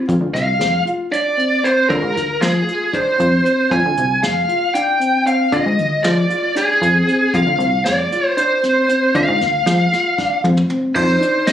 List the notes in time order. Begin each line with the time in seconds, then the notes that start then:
0.08 F2 F4, kick, closed hi-hat
0.21 D2
0.34 C2 F5, snare, closed hi-hat
0.59 F2 G#4, snare, closed hi-hat
0.85 F4, closed hi-hat
1.11 D4 D5, closed hi-hat
1.37 C4, closed hi-hat
1.63 C4 C5, closed hi-hat
1.89 D3 F4 A#4, kick, closed hi-hat
2.02 G#2
2.15 D2, snare, closed hi-hat
2.41 F3 G#4, snare, closed hi-hat
2.67 F4, closed hi-hat
2.93 D4 C5, kick, closed hi-hat
3.18 F2 C4, closed hi-hat
3.44 C4, closed hi-hat
3.70 F2 F4 G#5, kick, closed hi-hat
3.85 D2
3.97 C2, closed hi-hat
4.23 F2 G#4 F5, snare, closed hi-hat
4.48 F4, closed hi-hat
4.74 D4 G5, closed hi-hat
5.00 C4, closed hi-hat
5.25 C4 F5, closed hi-hat
5.52 D3 F4 D#5, kick, closed hi-hat
5.66 G#2
5.78 D2, closed hi-hat
6.03 F3 G#4 D5, snare, closed hi-hat
6.30 F4, closed hi-hat
6.55 D4 G#4, snare, closed hi-hat
6.81 F2 C4, closed hi-hat
7.07 C4, closed hi-hat
7.34 F2 F4 F5, kick, closed hi-hat
7.46 D2
7.58 C2, closed hi-hat
7.85 F2 G#4 D5, snare, closed hi-hat
8.12 F4, closed hi-hat
8.28 C5
8.37 D4 C5, closed hi-hat
8.63 C4, snare, closed hi-hat
8.89 C4, closed hi-hat
9.14 D3 F4 F5, kick, closed hi-hat
9.28 G#2
9.41 D2, snare, closed hi-hat
9.66 F3 G#4, snare, closed hi-hat
9.92 F4, snare, closed hi-hat
10.18 D4, kick, snare
10.44 F2 C4, high tom
10.57 mid tom
10.70 C4, mid tom
10.94 F2 D#4 C5, kick, crash
11.21 D4, closed hi-hat
11.47 C4 G#4 D#5, snare, closed hi-hat